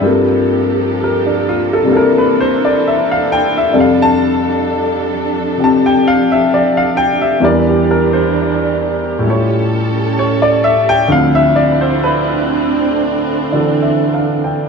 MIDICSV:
0, 0, Header, 1, 3, 480
1, 0, Start_track
1, 0, Tempo, 917431
1, 26, Time_signature, 4, 2, 24, 8
1, 7685, End_track
2, 0, Start_track
2, 0, Title_t, "Grand piano"
2, 0, Program_c, 0, 0
2, 0, Control_c, 0, 64, 127
2, 2, Note_on_c, 0, 43, 51
2, 8, Note_on_c, 0, 55, 49
2, 18, Note_on_c, 0, 58, 48
2, 19, Note_on_c, 0, 60, 48
2, 25, Note_on_c, 0, 65, 46
2, 30, Note_on_c, 0, 69, 56
2, 33, Control_c, 0, 64, 0
2, 120, Control_c, 0, 64, 127
2, 542, Note_on_c, 0, 70, 68
2, 660, Note_on_c, 0, 62, 51
2, 687, Note_off_c, 0, 70, 0
2, 772, Note_off_c, 0, 65, 0
2, 780, Note_on_c, 0, 65, 83
2, 829, Note_off_c, 0, 62, 0
2, 882, Note_off_c, 0, 65, 0
2, 899, Note_off_c, 0, 69, 0
2, 907, Note_on_c, 0, 69, 72
2, 955, Note_on_c, 0, 48, 54
2, 960, Note_off_c, 0, 55, 0
2, 968, Note_on_c, 0, 55, 49
2, 969, Note_off_c, 0, 58, 0
2, 977, Note_on_c, 0, 58, 48
2, 979, Note_off_c, 0, 43, 0
2, 984, Note_off_c, 0, 69, 0
2, 988, Note_off_c, 0, 60, 0
2, 991, Note_on_c, 0, 62, 49
2, 996, Control_c, 0, 64, 0
2, 996, Note_on_c, 0, 64, 49
2, 1008, Note_on_c, 0, 69, 59
2, 1028, Note_on_c, 0, 70, 74
2, 1088, Control_c, 0, 64, 127
2, 1141, Note_on_c, 0, 71, 75
2, 1171, Note_off_c, 0, 70, 0
2, 1258, Note_on_c, 0, 72, 85
2, 1310, Note_off_c, 0, 71, 0
2, 1362, Note_off_c, 0, 72, 0
2, 1385, Note_on_c, 0, 74, 72
2, 1464, Note_off_c, 0, 74, 0
2, 1504, Note_on_c, 0, 76, 72
2, 1629, Note_on_c, 0, 77, 77
2, 1650, Note_off_c, 0, 76, 0
2, 1738, Note_on_c, 0, 79, 96
2, 1796, Note_off_c, 0, 77, 0
2, 1843, Note_off_c, 0, 79, 0
2, 1870, Note_on_c, 0, 76, 79
2, 1938, Note_off_c, 0, 48, 0
2, 1944, Note_off_c, 0, 55, 0
2, 1944, Note_off_c, 0, 62, 0
2, 1947, Note_on_c, 0, 41, 53
2, 1948, Note_off_c, 0, 76, 0
2, 1949, Note_off_c, 0, 58, 0
2, 1950, Note_off_c, 0, 69, 0
2, 1952, Note_on_c, 0, 48, 52
2, 1952, Note_on_c, 0, 62, 51
2, 1954, Note_on_c, 0, 55, 52
2, 1957, Note_on_c, 0, 69, 60
2, 1958, Note_off_c, 0, 64, 0
2, 1961, Control_c, 0, 64, 0
2, 1990, Note_on_c, 0, 77, 72
2, 2041, Control_c, 0, 64, 127
2, 2105, Note_on_c, 0, 81, 89
2, 2134, Note_off_c, 0, 77, 0
2, 2210, Note_off_c, 0, 81, 0
2, 2909, Note_off_c, 0, 48, 0
2, 2917, Note_on_c, 0, 48, 43
2, 2918, Note_on_c, 0, 53, 40
2, 2930, Note_on_c, 0, 60, 38
2, 2931, Note_on_c, 0, 67, 47
2, 2950, Note_on_c, 0, 81, 75
2, 3066, Note_on_c, 0, 79, 88
2, 3096, Note_off_c, 0, 81, 0
2, 3179, Note_on_c, 0, 77, 84
2, 3236, Note_off_c, 0, 79, 0
2, 3286, Note_off_c, 0, 77, 0
2, 3306, Note_on_c, 0, 76, 77
2, 3387, Note_off_c, 0, 76, 0
2, 3422, Note_on_c, 0, 74, 77
2, 3544, Note_on_c, 0, 77, 80
2, 3571, Note_off_c, 0, 74, 0
2, 3647, Note_on_c, 0, 79, 96
2, 3715, Note_off_c, 0, 77, 0
2, 3760, Note_off_c, 0, 79, 0
2, 3775, Note_on_c, 0, 76, 76
2, 3862, Note_off_c, 0, 76, 0
2, 3871, Note_on_c, 0, 40, 58
2, 3872, Note_off_c, 0, 55, 0
2, 3875, Note_off_c, 0, 41, 0
2, 3876, Note_on_c, 0, 52, 54
2, 3878, Note_off_c, 0, 62, 0
2, 3879, Note_off_c, 0, 48, 0
2, 3879, Note_off_c, 0, 53, 0
2, 3880, Note_off_c, 0, 69, 0
2, 3880, Note_on_c, 0, 55, 54
2, 3885, Note_off_c, 0, 60, 0
2, 3886, Note_off_c, 0, 67, 0
2, 3887, Control_c, 0, 64, 0
2, 3890, Note_on_c, 0, 62, 54
2, 3891, Note_on_c, 0, 70, 62
2, 3896, Note_on_c, 0, 74, 78
2, 3975, Control_c, 0, 64, 127
2, 4021, Note_on_c, 0, 67, 55
2, 4048, Note_off_c, 0, 74, 0
2, 4130, Note_off_c, 0, 70, 0
2, 4138, Note_on_c, 0, 70, 75
2, 4193, Note_off_c, 0, 67, 0
2, 4245, Note_off_c, 0, 70, 0
2, 4254, Note_on_c, 0, 72, 68
2, 4808, Note_on_c, 0, 45, 53
2, 4818, Note_on_c, 0, 64, 49
2, 4830, Note_off_c, 0, 55, 0
2, 4834, Note_off_c, 0, 40, 0
2, 4837, Note_off_c, 0, 52, 0
2, 4838, Note_on_c, 0, 55, 48
2, 4844, Note_off_c, 0, 62, 0
2, 4844, Control_c, 0, 64, 0
2, 4851, Note_on_c, 0, 65, 48
2, 4866, Note_on_c, 0, 73, 65
2, 4945, Control_c, 0, 64, 127
2, 4967, Note_off_c, 0, 72, 0
2, 5323, Note_off_c, 0, 73, 0
2, 5331, Note_on_c, 0, 73, 80
2, 5452, Note_on_c, 0, 74, 87
2, 5484, Note_off_c, 0, 73, 0
2, 5567, Note_on_c, 0, 76, 89
2, 5627, Note_off_c, 0, 74, 0
2, 5678, Note_off_c, 0, 76, 0
2, 5698, Note_on_c, 0, 79, 106
2, 5780, Note_off_c, 0, 45, 0
2, 5781, Note_off_c, 0, 79, 0
2, 5786, Note_off_c, 0, 64, 0
2, 5795, Note_off_c, 0, 55, 0
2, 5798, Note_on_c, 0, 38, 57
2, 5798, Note_on_c, 0, 50, 51
2, 5799, Note_on_c, 0, 53, 52
2, 5801, Note_on_c, 0, 60, 51
2, 5802, Note_off_c, 0, 65, 0
2, 5803, Control_c, 0, 64, 0
2, 5818, Note_on_c, 0, 77, 85
2, 5901, Control_c, 0, 64, 127
2, 5939, Note_on_c, 0, 76, 89
2, 5967, Note_off_c, 0, 77, 0
2, 6047, Note_on_c, 0, 74, 79
2, 6110, Note_off_c, 0, 76, 0
2, 6157, Note_off_c, 0, 74, 0
2, 6179, Note_on_c, 0, 72, 74
2, 6261, Note_off_c, 0, 72, 0
2, 6297, Note_on_c, 0, 71, 82
2, 6488, Note_off_c, 0, 71, 0
2, 7070, Note_off_c, 0, 50, 0
2, 7076, Note_on_c, 0, 74, 51
2, 7078, Note_on_c, 0, 50, 50
2, 7081, Note_on_c, 0, 52, 44
2, 7086, Note_on_c, 0, 62, 44
2, 7093, Note_on_c, 0, 69, 52
2, 7231, Note_on_c, 0, 76, 50
2, 7325, Note_off_c, 0, 74, 0
2, 7398, Note_on_c, 0, 77, 49
2, 7540, Note_off_c, 0, 76, 0
2, 7556, Note_on_c, 0, 79, 57
2, 7645, Note_off_c, 0, 77, 0
2, 7685, Note_off_c, 0, 38, 0
2, 7685, Note_off_c, 0, 50, 0
2, 7685, Note_off_c, 0, 52, 0
2, 7685, Note_off_c, 0, 53, 0
2, 7685, Note_off_c, 0, 60, 0
2, 7685, Note_off_c, 0, 62, 0
2, 7685, Note_off_c, 0, 69, 0
2, 7685, Note_off_c, 0, 79, 0
2, 7685, End_track
3, 0, Start_track
3, 0, Title_t, "String section"
3, 0, Program_c, 1, 48
3, 0, Note_on_c, 1, 48, 64
3, 24, Note_on_c, 1, 53, 71
3, 25, Note_on_c, 1, 58, 64
3, 25, Note_on_c, 1, 67, 68
3, 25, Note_on_c, 1, 69, 77
3, 980, Note_off_c, 1, 53, 0
3, 981, Note_off_c, 1, 67, 0
3, 983, Note_on_c, 1, 52, 65
3, 986, Note_on_c, 1, 62, 65
3, 1936, Note_off_c, 1, 58, 0
3, 1938, Note_off_c, 1, 48, 0
3, 1942, Note_off_c, 1, 52, 0
3, 1943, Note_on_c, 1, 53, 69
3, 1946, Note_on_c, 1, 67, 63
3, 3854, Note_off_c, 1, 53, 0
3, 3856, Note_off_c, 1, 62, 0
3, 3858, Note_off_c, 1, 69, 0
3, 3871, Note_on_c, 1, 52, 78
3, 3871, Note_on_c, 1, 62, 66
3, 4824, Note_off_c, 1, 52, 0
3, 4824, Note_off_c, 1, 62, 0
3, 4829, Note_on_c, 1, 69, 81
3, 4831, Note_on_c, 1, 61, 67
3, 5770, Note_off_c, 1, 67, 0
3, 5782, Note_off_c, 1, 61, 0
3, 5782, Note_off_c, 1, 69, 0
3, 5793, Note_on_c, 1, 62, 68
3, 5794, Note_on_c, 1, 64, 72
3, 5795, Note_on_c, 1, 60, 85
3, 6742, Note_off_c, 1, 64, 0
3, 6757, Note_on_c, 1, 69, 69
3, 7685, Note_off_c, 1, 60, 0
3, 7685, Note_off_c, 1, 62, 0
3, 7685, Note_off_c, 1, 69, 0
3, 7685, End_track
0, 0, End_of_file